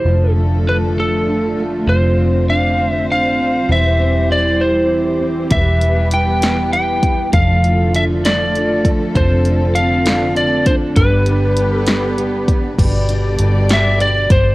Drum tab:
CC |------|------|------|------|
HH |------|------|------|xxxxxx|
SD |------|------|------|---o--|
BD |------|------|------|o----o|

CC |------|------|------|x-----|
HH |xxxxxx|xxxxxx|xxxxxx|xxxxxx|
SD |---o--|---o--|---o--|---o--|
BD |o----o|o----o|o----o|o----o|